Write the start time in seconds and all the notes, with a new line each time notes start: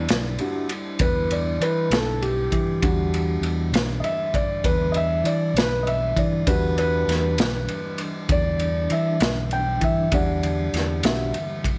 Already playing: G3 D4 E4 D5
0.08 B1, snare, ride
0.38 G3 D4 F#4, ride
0.69 ride
0.99 E2 B4, kick, ride
1.30 D5, ride
1.60 E3 B4, ride
1.90 B1 A4, snare, ride
2.22 G4, ride
2.52 E3, kick, ride
2.82 E2 E3 G3 D4 F#4, kick, ride
3.14 ride
3.41 E2, ride
3.72 B1, snare, ride
4.00 D#5, ride
4.04 E5
4.34 D5, kick, ride
4.64 E2 B4, kick, ride
4.92 D#5, ride
4.97 E5
5.24 E3 D5, ride
5.54 B1 B4, ride
5.58 snare
5.83 D#5
5.87 E5, ride
6.16 E3 D5, kick, ride
6.46 E2 E3 G3 D4 F#4 B4, kick, ride
6.78 B4, ride
7.08 E2, snare, ride
7.38 B1, snare, ride
7.68 ride
7.98 ride
8.29 E2 D5, kick, ride
8.59 ride
8.90 E3 E5, ride
9.20 B1, snare, ride
9.51 G5, ride
9.81 E3 E5, kick, ride
10.11 E2 D3 E3 G3 D4 D5 F#5, kick, ride
10.43 ride
10.73 E2, snare, ride
11.03 B1 G3 D4 F#4 E5, snare, ride
11.34 ride
11.64 kick, ride